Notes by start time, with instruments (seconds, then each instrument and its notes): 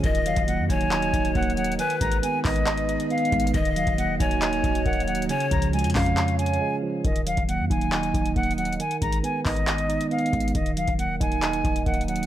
0.04 808-style bass D#1, analog synth pad D#3 A#3 F#4, tine electric piano D#3, flute D#5, pan flute D#5, kick, closed hi-hat
0.15 closed hi-hat
0.26 tine electric piano F#3, flute F5, closed hi-hat
0.36 808-style bass D#1, kick, closed hi-hat
0.48 tine electric piano A#3, flute F#5, closed hi-hat
0.59 808-style bass F#2
0.69 808-style bass D#1, tine electric piano D#4, pan flute C#5, flute G#5, kick, closed hi-hat
0.81 closed hi-hat
0.91 tine electric piano D#5, clap, closed hi-hat
1.02 closed hi-hat
1.13 808-style bass D#1, tine electric piano D#4, kick, closed hi-hat
1.25 closed hi-hat
1.35 808-style bass D#1, tine electric piano A#3, flute F#5, kick, closed hi-hat
1.43 closed hi-hat
1.50 closed hi-hat
1.57 tine electric piano F#3, flute F#5, closed hi-hat
1.64 closed hi-hat
1.72 closed hi-hat
1.79 tine electric piano D#3, analog synth pad G#3 D#4 B4, pan flute B4, flute G#5, closed hi-hat
1.90 closed hi-hat
2.01 808-style bass G#1, tine electric piano G#3, flute A#5, kick, closed hi-hat
2.12 closed hi-hat
2.23 tine electric piano B3, flute G#5, closed hi-hat
2.44 808-style bass G#1, tine electric piano D#4, flute D#5, kick, clap, open hi-hat
2.56 closed hi-hat
2.67 tine electric piano D#5, clap, closed hi-hat
2.77 closed hi-hat
2.89 tine electric piano D#4, closed hi-hat
3.00 closed hi-hat
3.10 tine electric piano B3, flute F5, closed hi-hat
3.18 closed hi-hat
3.25 closed hi-hat
3.32 808-style bass G#1, tine electric piano G#3, kick, closed hi-hat
3.40 closed hi-hat
3.47 closed hi-hat
3.54 808-style bass D#1, tine electric piano D#3, analog synth pad D#3 A#3 F#4, flute D#5, pan flute D#5, kick, closed hi-hat
3.65 closed hi-hat
3.76 tine electric piano F#3, flute F5, closed hi-hat
3.87 808-style bass D#1, kick, closed hi-hat
3.98 tine electric piano A#3, flute F#5, closed hi-hat
4.20 808-style bass D#1, tine electric piano D#4, pan flute C#5, flute G#5, kick, closed hi-hat
4.31 closed hi-hat
4.41 tine electric piano D#5, clap, closed hi-hat
4.53 closed hi-hat
4.63 808-style bass D#1, tine electric piano D#4, kick, closed hi-hat
4.75 closed hi-hat
4.85 808-style bass D#1, tine electric piano A#3, flute F#5, kick, closed hi-hat
4.93 closed hi-hat
5.00 closed hi-hat
5.07 tine electric piano F#3, flute F#5, closed hi-hat
5.15 808-style bass C#1, closed hi-hat
5.22 closed hi-hat
5.29 tine electric piano C#3, analog synth pad C#3 G#3 F4, pan flute C#5, flute G#5, closed hi-hat
5.40 closed hi-hat
5.51 808-style bass C#2, tine electric piano F3, flute A#5, kick, closed hi-hat
5.62 closed hi-hat
5.73 tine electric piano G#3, flute G#5, closed hi-hat
5.79 closed hi-hat
5.84 808-style bass F2, closed hi-hat
5.90 closed hi-hat
5.95 808-style bass F2, tine electric piano C#4, flute F5, kick, clap, open hi-hat
6.06 closed hi-hat
6.17 tine electric piano C#5, clap, closed hi-hat
6.28 closed hi-hat
6.38 tine electric piano C#4, flute G#5, closed hi-hat
6.46 closed hi-hat
6.54 closed hi-hat
6.61 tine electric piano G#3
6.82 tine electric piano F3
7.05 808-style bass D#1, tine electric piano D#3, flute D#5, kick, closed hi-hat
7.16 closed hi-hat
7.26 tine electric piano F#3, flute F5, closed hi-hat
7.37 808-style bass D#1, kick, closed hi-hat
7.48 tine electric piano A#3, flute F#5, closed hi-hat
7.59 808-style bass F#2
7.70 808-style bass D#1, tine electric piano D#4, flute G#5, kick, closed hi-hat
7.81 closed hi-hat
7.92 tine electric piano D#5, clap, closed hi-hat
8.03 closed hi-hat
8.14 808-style bass D#1, tine electric piano D#4, kick, closed hi-hat
8.26 closed hi-hat
8.36 808-style bass D#1, tine electric piano A#3, flute F#5, kick, closed hi-hat
8.43 closed hi-hat
8.51 closed hi-hat
8.58 tine electric piano F#3, flute F#5, closed hi-hat
8.65 closed hi-hat
8.73 closed hi-hat
8.80 tine electric piano D#3, flute G#5, closed hi-hat
8.91 closed hi-hat
9.02 808-style bass G#1, tine electric piano G#3, flute A#5, kick, closed hi-hat
9.12 closed hi-hat
9.23 tine electric piano B3, flute G#5, closed hi-hat
9.45 808-style bass G#1, tine electric piano D#4, flute D#5, kick, clap, open hi-hat
9.57 closed hi-hat
9.67 tine electric piano D#5, clap, closed hi-hat
9.78 closed hi-hat
9.89 tine electric piano D#4, closed hi-hat
10.01 closed hi-hat
10.11 tine electric piano B3, flute F5, closed hi-hat
10.19 closed hi-hat
10.26 closed hi-hat
10.32 808-style bass G#1, tine electric piano G#3, kick, closed hi-hat
10.40 closed hi-hat
10.48 closed hi-hat
10.55 808-style bass D#1, tine electric piano D#3, flute D#5, kick, closed hi-hat
10.66 closed hi-hat
10.76 tine electric piano F#3, flute F5, closed hi-hat
10.88 808-style bass D#1, kick, closed hi-hat
10.98 tine electric piano A#3, flute F#5, closed hi-hat
11.20 808-style bass D#1, tine electric piano D#4, flute G#5, kick, closed hi-hat
11.32 closed hi-hat
11.42 tine electric piano D#5, clap, closed hi-hat
11.53 closed hi-hat
11.64 808-style bass D#1, tine electric piano D#4, kick, closed hi-hat
11.76 closed hi-hat
11.86 808-style bass D#1, tine electric piano A#3, flute F#5, kick, closed hi-hat
11.94 closed hi-hat
12.01 closed hi-hat
12.08 tine electric piano F#3, flute F#5, closed hi-hat
12.16 808-style bass C#1, closed hi-hat
12.23 closed hi-hat